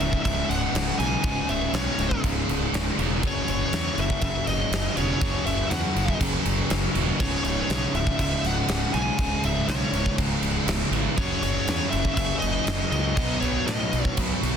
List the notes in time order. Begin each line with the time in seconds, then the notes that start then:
Already playing: C#2 G#2 C#3 C#4 G#4 D#5
0.00 C#1 C#2 G#2 C#3 E5, crash
0.13 kick
0.23 C#1 C#2 G#2 C#3 E5, kick, crash
0.49 C#1 F#5, crash
0.74 C#1 C#2 G#2 C#3, snare, crash
0.99 B1 C#2 G#2 C#3 G#5, crash
1.23 C#1 C#2 G#2 C#3, kick, crash
1.49 C#1 E5, crash
1.73 B1 C#2 G#2 C#3 C#5, snare, crash
1.98 C#1 C#2 G#2 C#3, crash
2.11 kick
2.24 C#1 C#2 G#2 C#3, kick, crash
2.49 C#1, crash
2.73 C#1 C#2 G#2 C#3, snare, crash
2.98 E1 C#2 G#2 C#3, crash
3.23 F#1 F#2 C#3 F#3 C#5, kick, crash
3.48 F#1 C#5, crash
3.72 E2 F#2 C#3 F#3, snare, crash
3.98 F#1 F#2 C#3 F#3 E5, crash
4.10 kick
4.21 F#1 F#2 C#3 F#3 E5, kick, crash
4.47 F#1 D#5, snare, crash
4.71 F#1 F#2 C#3 F#3, snare, crash
4.97 E1 F#2 C#3 F#3 C#5, crash
5.21 F#1 F#2 C#3 F#3, kick, crash
5.46 F#1 E5, crash
5.70 E2 F#2 C#3 F#3 F#5, snare, crash
5.95 F#1 F#2 C#3 F#3, crash
6.08 kick
6.20 F#1 F#2 C#3 F#3, kick, crash
6.45 F#1, crash
6.70 F#1 F#2 C#3 F#3, snare, crash
6.95 D#1 F#2 C#3 F#3, crash
7.19 C#1 C#2 G#2 C#3 C#5 D#5, kick, crash
7.44 C#1 C#5, crash
7.69 B1 C#2 G#2 C#3, snare, crash
7.94 C#1 C#2 G#2 C#3 E5, crash
8.07 kick
8.19 C#1 C#2 G#2 C#3 E5, kick, crash
8.44 C#1 F#5, snare, crash
8.68 C#1 C#2 G#2 C#3, snare, crash
8.94 B1 C#2 G#2 C#3 G#5, crash
9.18 C#1 C#2 G#2 C#3 E5, kick, crash
9.44 C#1 E5, crash
9.68 B1 C#2 G#2 C#3 C#5, snare, crash
9.92 C#1 C#2 G#2 C#3, crash
10.06 kick
10.18 C#1 C#2 G#2 C#3, kick, crash
10.42 C#1, crash
10.67 C#1 C#2 G#2 C#3, snare, crash
10.91 G#1 C#2 G#2 C#3, crash
11.17 F#1 F#2 C#3 F#3 C#4 G#4 C#5, kick, crash
11.42 F#1 C#5, crash
11.67 E2 F#2 C#3 F#3, snare, crash
11.90 F#1 F#2 C#3 F#3 E5, crash
12.05 kick
12.15 F#1 F#2 C#3 F#3 E5, kick, crash
12.39 F#1 D#5, crash
12.67 F#1 F#2 C#3 F#3, snare, crash
12.90 C#2 F#2 C#3 F#3 D#5, crash
13.17 B1 B2 F#3 B3 F#4 C#5, kick, crash
13.40 B1 C#5, crash
13.67 A2 B2 F#3 B3 D#5, snare, crash
13.93 B1 B2 F#3 B3, crash
14.05 kick
14.17 B1 B2 F#3 B3, kick, crash
14.43 B1, crash